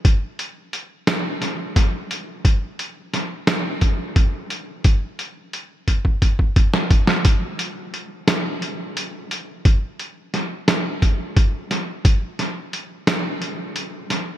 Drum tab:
HH |x-x-x-x-x-x-x-|x-x-x-x-x-x-x-|x-x-x-x-x-x-x-|x-x-x-x-x-x-x-|
SD |------o-o-o---|----o-o-------|-----------o-o|------o-------|
BD |o---------o---|o-------o-o---|o-----ooooo-o-|o-------------|

HH |x-x-x-x-x-x-x-|x-x-x-x-x-x-x-|
SD |----o-o-----o-|--o---o-----o-|
BD |o-------o-o---|o-------------|